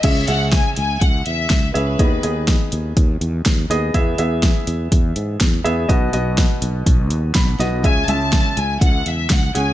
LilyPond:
<<
  \new Staff \with { instrumentName = "Violin section" } { \time 4/4 \key cis \minor \tempo 4 = 123 e''8 fis''8 gis''8 gis''8 fis''8 e''4 b'8~ | b'4 r2. | r1 | r1 |
gis''8 a''4 gis''8 fis''8 e''8 fis''8 gis''8 | }
  \new Staff \with { instrumentName = "Grand piano" } { \time 4/4 \key cis \minor <cis' gis' e''>8 <cis' gis' e''>4. r4. <cis' gis' e''>8 | <b gis' dis''>8 <b gis' dis''>4. r4. <b gis' dis''>8 | <b gis' e''>8 <b gis' e''>4. r4. <b gis' e''>8 | <b fis' dis''>8 <b fis' dis''>4. r4. <b fis' dis''>8 |
<cis' gis' e''>8 <gis cis' e''>4. r4. <cis' gis' fis''>8 | }
  \new Staff \with { instrumentName = "Grand piano" } { \clef bass \time 4/4 \key cis \minor cis4. r2 r8 | dis4. r2 r8 | e4. r2 r8 | b,4. r4. b''4 |
cis4. r2 r8 | }
  \new Staff \with { instrumentName = "Fretless electric bass" } { \clef bass \time 4/4 \key cis \minor cis,8 cis,8. r16 cis,8 cis,8 e,8 cis,8 cis,8 | dis,8 dis,8. r16 dis,8 dis,8 e,8 dis,8 dis,8 | e,8 e,8. r16 e,8 e,8 gis,8 e,8 e,8 | b,,8 b,,8. r16 b,,8 b,,8 dis,8 b,,8 b,,8 |
cis,8 cis,8. r16 cis,8 cis,8 e,8 cis,8 cis,8 | }
  \new DrumStaff \with { instrumentName = "Drums" } \drummode { \time 4/4 <cymc hh bd>8 hh8 <hh bd sn>8 hh8 <hh bd>8 hh8 <hh bd sn>8 hh8 | <hh bd>8 hh8 <hh bd sn>8 hh8 <hh bd>8 hh8 <hh bd sn>8 hh8 | <hh bd>8 hh8 <hh bd sn>8 hh8 <hh bd>8 hh8 <hh bd sn>8 hh8 | <hh bd>8 hh8 <hh bd sn>8 hh8 <hh bd>8 hh8 <hh bd sn>8 <hh sn>8 |
<hh bd>8 hh8 <hh bd sn>8 hh8 <hh bd>8 hh8 <hh bd sn>8 hh8 | }
>>